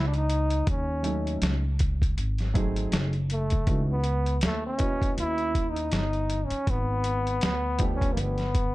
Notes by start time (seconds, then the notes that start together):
Already playing: C#2
0.08 D4
0.14 D#4, closed hi-hat
0.30 closed hi-hat
0.50 closed hi-hat
0.67 D#2 C#4, kick, closed hi-hat
1.03 F#3 A3 C#4 D#4 A4, closed hi-hat
1.27 closed hi-hat
1.42 C#2, snare, closed hi-hat
1.79 kick, closed hi-hat
2.02 kick, closed hi-hat
2.17 G#1, closed hi-hat
2.38 snare, closed hi-hat
2.54 F#3 A3 C4 D#4 G#4, kick, closed hi-hat
2.76 closed hi-hat
2.92 F#1, snare, closed hi-hat
3.13 closed hi-hat
3.30 A3, closed hi-hat
3.50 kick, closed hi-hat
3.66 C#2 E3 B3 C#4 D#4 F#4, kick, closed hi-hat
3.92 B3
4.04 closed hi-hat
4.26 closed hi-hat
4.41 D#2 A3, snare, closed hi-hat
4.67 C#4
4.78 B3 C#4 E4 F#4 D#5, kick, closed hi-hat
5.02 kick, closed hi-hat
5.18 D#2 E4, closed hi-hat
5.38 closed hi-hat
5.55 kick, closed hi-hat
5.70 D#4
5.76 closed hi-hat
5.92 G1 D#4, snare, closed hi-hat
6.13 closed hi-hat
6.30 closed hi-hat
6.46 C#4
6.50 muted upright bass stroke, closed hi-hat
6.67 G#1 B3, kick, closed hi-hat
7.04 closed hi-hat
7.27 closed hi-hat
7.41 D2 B3, snare, closed hi-hat
7.79 F3 A3 B3 D4 G4, kick, closed hi-hat
7.95 C#4
8.01 kick, closed hi-hat
8.13 G1 A#3
8.17 B3, closed hi-hat
8.38 snare, closed hi-hat
8.55 kick, closed hi-hat